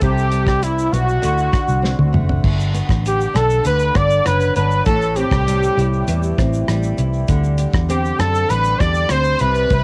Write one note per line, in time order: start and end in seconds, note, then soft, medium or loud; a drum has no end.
0.00 0.89 C2 loud
0.00 1.22 C3 medium
0.00 0.92 C4 medium
0.00 0.65 G4 medium
0.00 kick loud
0.00 closed hi-hat medium
0.00 shaker medium
0.18 shaker soft
0.32 1.29 G3 medium
0.32 closed hi-hat medium
0.32 shaker soft
0.47 kick medium
0.47 cross-stick medium
0.47 shaker soft
0.62 1.29 E4 medium
0.62 0.94 E4 medium
0.62 closed hi-hat medium
0.62 shaker medium
0.79 shaker medium
0.92 1.17 B1 medium
0.92 1.29 B3 soft
0.92 2.14 F#4 medium
0.92 closed hi-hat medium
0.92 shaker soft
1.09 shaker soft
1.22 1.48 D2 medium
1.22 3.64 D3 medium
1.22 closed hi-hat medium
1.22 shaker medium
1.38 shaker medium
1.53 3.34 F#4 medium
1.53 muted fingered electric bass stroke soft
1.53 kick loud
1.53 cross-stick medium
1.53 closed hi-hat medium
1.53 shaker medium
1.68 1.93 C2 medium
1.68 shaker medium
1.82 2.50 C4 medium
1.82 snare soft
1.99 2.11 D2 medium
1.99 high tom medium
2.13 2.38 F#1 loud
2.13 2.50 A3 medium
2.13 mid tom medium
2.29 floor tom medium
2.44 2.81 G1 loud
2.44 kick loud
2.44 crash medium
2.60 shaker medium
2.73 3.93 B3 medium
2.73 closed hi-hat soft
2.73 shaker medium
2.89 3.26 A1 medium
2.89 kick loud
2.89 cross-stick medium
2.89 shaker soft
3.06 3.37 G4 medium
3.06 closed hi-hat medium
3.06 shaker medium
3.21 shaker medium
3.34 3.59 B1 medium
3.34 4.55 D4 medium
3.34 3.66 A4 medium
3.34 cross-stick medium
3.34 closed hi-hat medium
3.34 shaker soft
3.50 shaker medium
3.65 3.90 D2 medium
3.65 4.92 D3 medium
3.65 3.98 B4 loud
3.65 closed hi-hat medium
3.65 shaker medium
3.79 shaker medium
3.94 4.20 G1 medium
3.94 4.92 B3 medium
3.94 4.27 D5 medium
3.94 kick medium
3.94 cross-stick medium
3.94 closed hi-hat medium
3.94 shaker medium
4.10 shaker medium
4.24 4.50 F#1 loud
4.24 4.92 F#3 medium
4.24 4.55 B4 medium
4.24 cross-stick medium
4.24 closed hi-hat medium
4.24 shaker medium
4.40 shaker soft
4.56 4.81 G1 medium
4.56 4.93 D4 medium
4.56 4.84 B4 medium
4.56 closed hi-hat soft
4.56 shaker medium
4.71 shaker medium
4.86 5.23 A1 loud
4.86 7.29 A2 medium
4.86 5.18 A4 medium
4.86 kick loud
4.86 closed hi-hat medium
4.86 shaker medium
5.02 shaker soft
5.16 6.38 C4 medium
5.16 6.38 G4 medium
5.16 closed hi-hat medium
5.16 shaker medium
5.31 5.68 C2 medium
5.31 kick medium
5.31 cross-stick medium
5.31 shaker soft
5.47 6.68 G3 medium
5.47 closed hi-hat medium
5.47 shaker medium
5.63 shaker medium
5.77 6.02 C2 medium
5.77 6.97 E4 medium
5.77 closed hi-hat soft
5.77 shaker soft
5.93 shaker soft
6.08 6.32 E2 medium
6.08 7.28 E3 medium
6.08 closed hi-hat medium
6.08 shaker medium
6.23 shaker medium
6.38 6.63 A1 medium
6.38 7.88 C4 medium
6.38 kick medium
6.38 cross-stick medium
6.38 closed hi-hat medium
6.38 shaker medium
6.53 shaker medium
6.68 6.93 A1 medium
6.68 8.23 G3 medium
6.68 cross-stick medium
6.68 closed hi-hat medium
6.68 shaker medium
6.83 shaker soft
6.98 7.23 C2 medium
6.98 7.35 E4 medium
6.98 closed hi-hat medium
6.98 shaker medium
7.13 shaker medium
7.28 7.65 D2 loud
7.28 9.41 D3 medium
7.28 kick loud
7.28 closed hi-hat medium
7.28 shaker medium
7.44 shaker soft
7.58 8.80 G4 medium
7.58 closed hi-hat medium
7.58 shaker soft
7.74 8.10 E2 medium
7.74 kick medium
7.74 cross-stick medium
7.74 shaker soft
7.89 9.10 C4 medium
7.89 8.21 G4 medium
7.89 closed hi-hat medium
7.89 shaker medium
8.05 shaker medium
8.19 8.44 F#2 loud
8.19 8.51 A4 medium
8.19 9.47 A4 medium
8.19 cross-stick medium
8.19 closed hi-hat medium
8.19 shaker medium
8.35 shaker medium
8.49 8.74 A1 medium
8.49 9.84 G3 medium
8.49 8.81 B4 loud
8.49 closed hi-hat medium
8.49 shaker medium
8.64 shaker medium
8.80 9.05 E2 medium
8.80 9.84 G4 medium
8.80 9.12 D5 loud
8.80 kick medium
8.80 cross-stick loud
8.80 closed hi-hat medium
8.80 shaker medium
8.94 shaker medium
9.09 9.35 D2 medium
9.09 9.84 C4 medium
9.09 9.42 C5 loud
9.09 cross-stick medium
9.09 closed hi-hat medium
9.09 shaker medium
9.24 shaker soft
9.39 9.65 C2 medium
9.39 9.71 C3 medium
9.39 9.84 B4 loud
9.39 closed hi-hat medium
9.39 shaker soft
9.55 shaker medium
9.71 9.84 C2 loud
9.71 9.84 C3 medium
9.71 kick loud
9.71 closed hi-hat medium
9.71 shaker medium